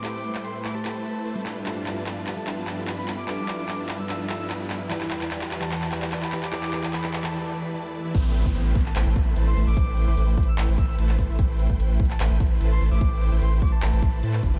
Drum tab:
CC |--------------------------------|--------------------------------|--------------------------------|--------------------------------|
HH |x---x---x---x---x---x---x-xxx---|x---x---x---x---x---x---x-xxo---|x---x---x---x---x---x---x-xxo---|x---x---x---x---x---x---x-xxo---|
CP |x-----x-----x---x-----------x---|x---x---x---x---x---x---x---x---|x---x---x---x---x---x---x---x---|x-x-x-x-x-x-x-x-x-x-x-x-x-x-x-x-|
BD |--------------------------------|--------------------------------|--------------------------------|--------------------------------|

CC |--------------------------------|x-------------------------------|--------------------------------|--------------------------------|
HH |x---x---x---x-------------------|x---x---x---xx--x---x---x---o---|x---x---x---xx--x---x---x---o---|x---x---x---xx--x---x---x---o---|
CP |x-x-x-x-x-x-x-x-----------------|--------------x-x---------------|----------------x---------x-----|--------------x-x---------------|
BD |--------------------------------|o-----o-----o-------o-----------|o-----------o-------o-------o---|o-----o-----o-------o-----------|

CC |--------------------------------|
HH |x---x---x---xx--x---x---x---o---|
CP |----------------x---------x-----|
BD |o-----------o-------o-------o---|